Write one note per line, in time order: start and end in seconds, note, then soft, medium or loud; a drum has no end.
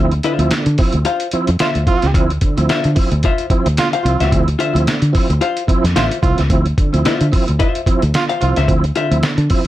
0.00 0.19 D2 loud
0.00 0.14 F3 medium
0.00 0.14 C4 medium
0.00 0.14 E4 medium
0.12 closed hi-hat soft
0.23 0.41 D3 medium
0.23 0.45 F4 medium
0.23 0.46 C5 loud
0.23 0.46 E5 medium
0.23 closed hi-hat medium
0.39 0.49 D2 loud
0.39 0.53 F3 medium
0.39 0.54 C4 medium
0.39 0.54 E4 loud
0.39 closed hi-hat medium
0.51 0.69 D3 medium
0.51 muted fingered electric bass stroke medium
0.51 snare loud
0.51 closed hi-hat medium
0.66 0.76 D3 loud
0.66 closed hi-hat medium
0.78 0.96 F3 medium
0.78 0.94 C4 medium
0.78 0.94 E4 medium
0.78 kick medium
0.78 open hi-hat medium
0.93 1.03 D2 medium
0.93 0.99 C4 soft
0.93 0.99 E4 soft
0.93 closed hi-hat medium
1.05 1.26 F4 medium
1.05 1.27 C5 medium
1.05 1.27 F5 loud
1.05 closed hi-hat medium
1.20 closed hi-hat medium
1.31 1.50 F3 medium
1.31 1.50 C4 medium
1.31 1.50 E4 loud
1.31 muted fingered electric bass stroke soft
1.31 closed hi-hat medium
1.47 1.58 F2 loud
1.47 closed hi-hat medium
1.59 1.78 D3 medium
1.59 1.70 F4 loud
1.59 1.81 F4 medium
1.59 1.81 C5 medium
1.59 1.82 E5 medium
1.59 muted fingered electric bass stroke soft
1.59 snare loud
1.59 closed hi-hat loud
1.75 1.85 D2 medium
1.75 closed hi-hat medium
1.87 2.05 F3 medium
1.87 2.01 C4 medium
1.87 2.02 E4 loud
1.87 2.10 F4 loud
1.87 kick loud
1.87 closed hi-hat medium
2.02 2.14 C#2 loud
2.02 2.07 C4 soft
2.02 2.08 E4 soft
2.02 snare soft
2.02 closed hi-hat medium
2.14 2.37 D2 loud
2.14 2.32 F3 medium
2.14 2.32 C4 medium
2.14 2.32 E4 loud
2.14 kick loud
2.14 closed hi-hat medium
2.30 closed hi-hat soft
2.41 2.59 D3 medium
2.41 kick medium
2.41 closed hi-hat medium
2.57 2.67 D2 loud
2.57 2.71 F3 medium
2.57 2.72 C4 medium
2.57 2.72 E4 medium
2.57 closed hi-hat medium
2.69 2.86 D3 medium
2.69 2.90 F4 medium
2.69 2.90 C5 loud
2.69 2.91 E5 loud
2.69 snare loud
2.69 closed hi-hat medium
2.84 2.94 D3 medium
2.84 closed hi-hat medium
2.96 3.13 F3 medium
2.96 3.10 C4 medium
2.96 3.10 E4 medium
2.96 kick loud
2.96 open hi-hat medium
3.11 3.21 D2 loud
3.11 3.16 C4 soft
3.11 3.16 E4 soft
3.11 closed hi-hat medium
3.23 3.45 F4 loud
3.23 3.45 C5 loud
3.23 3.46 E5 medium
3.23 kick loud
3.23 closed hi-hat medium
3.38 closed hi-hat medium
3.50 3.68 F3 loud
3.50 3.68 C4 medium
3.50 3.68 E4 medium
3.50 muted fingered electric bass stroke soft
3.50 kick medium
3.50 closed hi-hat medium
3.66 3.76 D2 medium
3.66 closed hi-hat medium
3.77 3.95 D3 medium
3.77 3.88 F4 loud
3.77 snare loud
3.77 closed hi-hat loud
3.93 4.13 F4 medium
3.93 4.13 C5 medium
3.93 4.12 F5 medium
3.93 closed hi-hat medium
4.03 4.17 C2 loud
4.03 4.22 F3 medium
4.03 4.20 C4 medium
4.03 4.19 E4 medium
4.03 4.40 F4 loud
4.03 closed hi-hat medium
4.20 4.30 C#2 medium
4.20 4.25 C4 soft
4.20 4.25 E4 soft
4.20 4.35 F4 soft
4.20 4.35 C5 medium
4.20 4.35 E5 medium
4.20 snare soft
4.20 closed hi-hat medium
4.31 4.55 D2 loud
4.31 4.49 F3 medium
4.31 4.49 C4 medium
4.31 4.49 E4 loud
4.31 kick loud
4.31 closed hi-hat medium
4.48 closed hi-hat medium
4.59 4.76 D3 medium
4.59 4.80 F4 loud
4.59 4.81 C5 loud
4.59 4.81 E5 medium
4.59 closed hi-hat medium
4.73 4.85 D2 loud
4.73 4.88 F3 medium
4.73 4.89 C4 medium
4.73 4.89 E4 loud
4.73 closed hi-hat medium
4.86 5.04 D3 medium
4.86 muted fingered electric bass stroke medium
4.86 snare loud
4.86 closed hi-hat medium
5.02 5.12 D3 medium
5.02 closed hi-hat medium
5.13 5.31 F3 medium
5.13 5.28 C4 medium
5.13 5.28 E4 medium
5.13 kick medium
5.13 open hi-hat medium
5.30 5.39 D2 medium
5.30 5.34 C4 soft
5.30 5.34 E4 soft
5.30 closed hi-hat medium
5.41 5.62 F4 medium
5.41 5.62 C5 loud
5.41 5.63 F5 medium
5.41 closed hi-hat medium
5.57 closed hi-hat medium
5.67 5.85 F3 medium
5.67 5.85 C4 medium
5.67 5.86 E4 loud
5.67 muted fingered electric bass stroke medium
5.67 kick medium
5.67 closed hi-hat medium
5.84 5.94 F2 loud
5.84 snare soft
5.84 closed hi-hat medium
5.95 6.08 A1 medium
5.95 6.13 D3 medium
5.95 6.05 F4 loud
5.95 6.17 F4 medium
5.95 6.17 C5 medium
5.95 6.17 E5 medium
5.95 snare loud
5.95 closed hi-hat medium
6.11 closed hi-hat medium
6.22 6.35 C2 medium
6.22 6.40 F3 medium
6.22 6.38 C4 medium
6.22 6.38 E4 medium
6.22 6.40 F4 loud
6.22 kick medium
6.22 closed hi-hat medium
6.38 6.49 C#2 medium
6.38 6.43 C4 soft
6.38 6.43 E4 soft
6.38 snare soft
6.38 closed hi-hat medium
6.49 6.72 D2 loud
6.49 6.67 F3 medium
6.49 6.67 C4 medium
6.49 6.67 E4 loud
6.49 kick loud
6.49 closed hi-hat loud
6.66 closed hi-hat soft
6.78 6.95 D3 medium
6.78 kick loud
6.78 closed hi-hat medium
6.93 7.03 D2 medium
6.93 7.07 F3 medium
6.93 7.07 C4 medium
6.93 7.07 E4 loud
6.93 closed hi-hat medium
7.05 7.22 D3 medium
7.05 7.26 F4 loud
7.05 7.26 C5 medium
7.05 7.26 E5 loud
7.05 muted fingered electric bass stroke medium
7.05 snare loud
7.05 closed hi-hat medium
7.21 7.30 D3 medium
7.21 closed hi-hat medium
7.32 7.49 F3 medium
7.32 7.46 C4 medium
7.32 7.46 E4 medium
7.32 kick medium
7.32 open hi-hat medium
7.47 7.58 D2 medium
7.47 7.52 C4 soft
7.47 7.52 E4 soft
7.47 closed hi-hat medium
7.59 7.80 F4 medium
7.59 7.80 C5 medium
7.59 7.81 E5 loud
7.59 kick medium
7.59 closed hi-hat medium
7.75 closed hi-hat medium
7.86 8.03 F3 medium
7.86 8.03 C4 medium
7.86 8.04 E4 medium
7.86 muted fingered electric bass stroke medium
7.86 kick medium
7.86 closed hi-hat medium
8.02 8.12 D2 loud
8.02 closed hi-hat medium
8.14 8.31 D3 medium
8.14 8.24 F4 loud
8.14 snare loud
8.14 closed hi-hat loud
8.29 8.49 F4 medium
8.29 8.48 C5 medium
8.29 8.48 F5 medium
8.29 closed hi-hat medium
8.40 8.54 C2 loud
8.40 8.58 F3 medium
8.40 8.55 C4 medium
8.40 8.55 E4 medium
8.40 8.58 F4 loud
8.40 closed hi-hat medium
8.56 8.66 C#2 loud
8.56 8.61 C4 soft
8.56 8.61 E4 soft
8.56 8.71 F4 medium
8.56 8.71 C5 medium
8.56 8.71 E5 medium
8.56 snare soft
8.56 closed hi-hat medium
8.68 8.90 D2 loud
8.68 8.85 F3 medium
8.68 8.85 C4 medium
8.68 8.85 E4 loud
8.68 kick loud
8.68 closed hi-hat medium
8.84 closed hi-hat soft
8.95 9.13 D3 medium
8.95 9.16 F4 medium
8.95 9.17 C5 medium
8.95 9.17 E5 loud
8.95 closed hi-hat medium
9.11 9.20 D2 medium
9.11 9.25 F3 medium
9.11 9.25 C4 medium
9.11 9.25 E4 loud
9.11 closed hi-hat medium
9.23 9.40 D3 medium
9.23 snare loud
9.23 closed hi-hat medium
9.38 9.47 D3 loud
9.38 closed hi-hat medium
9.50 9.67 F3 medium
9.50 9.64 C4 medium
9.50 9.64 E4 medium
9.50 kick medium
9.50 open hi-hat medium